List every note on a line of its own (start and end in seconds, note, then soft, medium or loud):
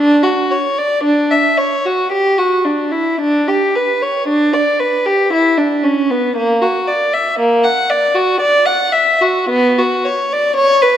0.00 0.21 D4 medium
0.23 0.50 F#4 medium
0.51 0.77 C#5 medium
0.78 1.04 D5 medium
1.04 1.30 D4 medium
1.31 1.58 E5 medium
1.58 1.84 C#5 medium
1.85 2.11 F#4 medium
2.12 2.37 G4 medium
2.38 2.64 F#4 medium
2.65 2.92 D4 medium
2.92 3.20 E4 medium
3.20 3.48 D4 medium
3.48 3.75 G4 medium
3.76 4.02 B4 medium
4.02 4.27 C#5 medium
4.28 4.53 D4 medium
4.53 4.79 D5 medium
4.79 5.05 B4 medium
5.06 5.32 G4 medium
5.33 5.58 E4 medium
5.58 5.84 D4 medium
5.84 6.10 C#4 medium
6.10 6.36 B3 medium
6.36 6.61 A#3 medium
6.62 6.88 F#4 medium
6.88 7.13 D5 medium
7.14 7.39 E5 medium
7.39 7.64 A#3 medium
7.64 7.90 F#5 medium
7.90 8.16 D5 medium
8.14 8.41 F#4 medium
8.40 8.67 D5 medium
8.66 8.94 F#5 medium
8.92 9.21 E5 medium
9.21 9.49 F#4 medium
9.49 9.77 B3 medium
9.78 10.05 F#4 medium
10.05 10.31 C#5 medium
10.33 10.58 D5 medium
10.56 10.82 C#5 medium
10.82 10.97 B4 medium